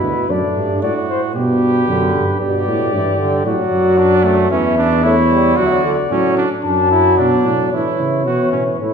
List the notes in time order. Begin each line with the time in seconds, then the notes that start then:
Already playing: B2 E4 B4
0.04 D2
0.29 F#2 A2 D4 D5
0.57 G2
0.82 A2 F#4 D5
1.09 C5
1.35 G2 B2 G4 B4
1.88 F#2 D3
2.14 G2
2.40 G2 B2 G4 D5
2.67 A2
2.93 G2 E3
3.19 D3
3.45 A2 F#3 F#4 D5
3.72 F#2
3.98 D4
4.24 A3
4.51 E2 E3 C#4 E5
4.77 D4
5.03 A3 E4 C#5
5.30 G3
5.57 D2 F#3 F#4 D5
5.64 E5
5.71 D5
5.85 D3
6.10 A2 F#3 C#4
6.37 D4
6.64 F#2 F#3 D4 A5
6.91 E4
7.18 B2 D4 D5
7.45 A2
7.72 A2 E3 E4 C#5
7.99 C#3
8.25 B2 E3 F#4
8.52 A2 C#4
8.79 A2 A3 E4 C#5